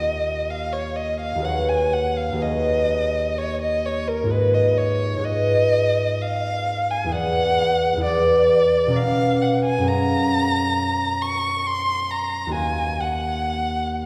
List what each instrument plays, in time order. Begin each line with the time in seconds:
Already playing: harp D#2 F4 F#4 A#4 D#5, violin D#5
0.50 violin F5
0.73 violin C#5
0.96 violin D#5
1.20 violin F5
1.35 harp D#2 F#4 G#4
1.41 harp B4 C#5, violin F#5
1.69 violin G#5
1.93 violin F#5
2.16 violin F5
2.32 harp D#2 F#4 G#4
2.37 harp B4 C#5
2.42 violin D#5
3.38 violin C#5
3.62 violin D#5
3.86 violin C#5
4.08 violin A#4
4.23 harp G#2 F4 G#4
4.29 harp B4 D#5, violin B4
4.54 violin D#5
4.77 violin C#5
5.18 harp G#2 F4 G#4
5.22 harp B4 D#5, violin D#5
6.21 violin F5
6.90 violin G#5
7.04 harp E2 E4 G#4
7.10 harp B4 D5, violin F#5
7.96 harp E2 E4 G#4
8.02 harp B4 D5, violin D5
8.87 harp B2 C#4 A#4
8.92 harp B4 D#5, violin F5
9.42 violin F#5
9.65 violin G#5
9.78 harp F#2 C#4 G#4
9.83 harp A#4 F5
9.88 violin A#5
11.22 violin C#6
11.67 violin C6
12.10 violin A#5
12.47 harp D#2 D#4 F#4
12.52 harp A#4 F5, violin G#5
13.00 violin F#5